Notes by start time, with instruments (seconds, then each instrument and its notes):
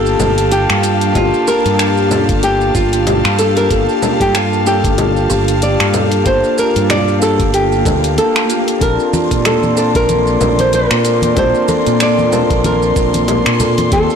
Already playing: fretless electric bass G1, tine electric piano A#3 D4 F4 A4, analog synth pad G4 F5 A5, nylon-string guitar A4
0.06 shaker
0.20 fretless electric bass G1, kalimba A4, low conga, shaker
0.38 closed hi-hat, shaker
0.52 nylon-string guitar G4, closed hi-hat, shaker
0.70 fretless electric bass G2, finger snap, shaker
0.83 kalimba F4, closed hi-hat, shaker
1.01 closed hi-hat, shaker
1.13 fretless electric bass G1, tine electric piano A#3 D4 F4 A5, nylon-string guitar F4, kick, closed hi-hat, low conga, shaker
1.34 shaker
1.48 kalimba G4, nylon-string guitar A#4, shaker
1.65 fretless electric bass G2, closed hi-hat, shaker
1.79 finger snap, closed hi-hat, shaker
1.97 shaker
2.09 tine electric piano A#3 D4 F4 A5, kalimba A4, low conga, shaker
2.29 fretless electric bass G1, kick, closed hi-hat, shaker
2.43 nylon-string guitar G4, closed hi-hat, shaker
2.61 shaker
2.75 fretless electric bass G1, nylon-string guitar F4, kalimba F4, kick, shaker
2.93 closed hi-hat, shaker
3.07 closed hi-hat, low conga, shaker
3.25 fretless electric bass G2, finger snap, shaker
3.39 kalimba G4, nylon-string guitar A4, closed hi-hat, shaker
3.57 nylon-string guitar A#4, closed hi-hat, shaker
3.69 fretless electric bass G1, tine electric piano A#3 D4 F4 A4, nylon-string guitar A4, kick, closed hi-hat, shaker
3.89 shaker
4.02 kalimba A4, low conga, shaker
4.20 fretless electric bass G2, nylon-string guitar G4, kick, closed hi-hat, shaker
4.35 nylon-string guitar F4, finger snap, closed hi-hat, shaker
4.53 shaker
4.65 tine electric piano A#3 D4 F4 A4, kalimba F4, nylon-string guitar G4, shaker
4.84 fretless electric bass G1, kick, closed hi-hat, shaker
4.98 closed hi-hat, low conga, shaker
5.17 shaker
5.30 fretless electric bass G1, kalimba G4, shaker
5.48 closed hi-hat, shaker
5.62 nylon-string guitar D5, closed hi-hat, shaker
5.80 fretless electric bass G2, finger snap, shaker
5.94 kalimba A4, closed hi-hat, low conga, shaker
6.12 closed hi-hat, shaker
6.24 fretless electric bass G1, tine electric piano A#3 D4 F4 A5, nylon-string guitar C5, kick, closed hi-hat, shaker
6.44 shaker
6.58 kalimba F4, nylon-string guitar A#4, shaker
6.76 fretless electric bass G2, closed hi-hat, shaker
6.90 nylon-string guitar D5, finger snap, closed hi-hat, low conga, shaker
7.08 shaker
7.20 tine electric piano A#3 D4 F4 A4, kalimba G4, nylon-string guitar A4, shaker
7.40 fretless electric bass G1, kick, closed hi-hat, shaker
7.54 nylon-string guitar G4, closed hi-hat, swell, shaker
7.72 shaker
7.85 fretless electric bass D2, kalimba A4, kick, closed hi-hat, low conga, shaker
8.04 closed hi-hat, shaker
8.18 nylon-string guitar A4, closed hi-hat, shaker
8.36 finger snap, shaker
8.49 kalimba F4, closed hi-hat, shaker
8.68 closed hi-hat, shaker
8.79 fretless electric bass A#1, analog synth pad A#3 D5 C6, tine electric piano C4 D4 F4 A5, nylon-string guitar A#4, kick, closed hi-hat, shaker
9.00 shaker
9.13 kalimba F4, high conga, shaker
9.31 fretless electric bass A#2, kick, closed hi-hat, shaker
9.45 nylon-string guitar A4, finger snap, closed hi-hat, low conga, shaker
9.63 high conga, shaker
9.76 tine electric piano C4 D4 F4 A5, kalimba A4, shaker
9.95 fretless electric bass A#1, nylon-string guitar A#4, kick, closed hi-hat, shaker
10.09 closed hi-hat, high conga, shaker
10.27 shaker
10.41 fretless electric bass A#1, kalimba A#4, low conga, shaker
10.59 nylon-string guitar C5, closed hi-hat, high conga, shaker
10.73 nylon-string guitar A#4, closed hi-hat, shaker
10.91 fretless electric bass A#2, finger snap, shaker
11.05 kalimba F4, closed hi-hat, shaker
11.22 closed hi-hat, high conga, shaker
11.35 fretless electric bass A#1, tine electric piano C4 D4 F4 A5, nylon-string guitar C5, kick, closed hi-hat, low conga, shaker
11.55 shaker
11.68 kalimba A4, high conga, shaker
11.86 fretless electric bass A#2, closed hi-hat, shaker
12.00 nylon-string guitar D5, finger snap, closed hi-hat, shaker
12.18 high conga, shaker
12.30 tine electric piano C4 D4 F4 A5, kalimba A#4, low conga, shaker
12.50 fretless electric bass A#1, kick, closed hi-hat, shaker
12.64 nylon-string guitar A#4, closed hi-hat, high conga, shaker
12.82 shaker
12.96 fretless electric bass A#1, kalimba F4, kick, shaker
13.14 closed hi-hat, high conga, shaker
13.28 closed hi-hat, low conga, shaker
13.46 fretless electric bass A#2, finger snap, shaker
13.60 kalimba A4, closed hi-hat, low conga, shaker
13.78 closed hi-hat, high conga, shaker
13.90 fretless electric bass D#2, tine electric piano A#3 C4 F4 G4, analog synth pad D#4 G4 F5, nylon-string guitar A4, kick, closed hi-hat, shaker
14.10 shaker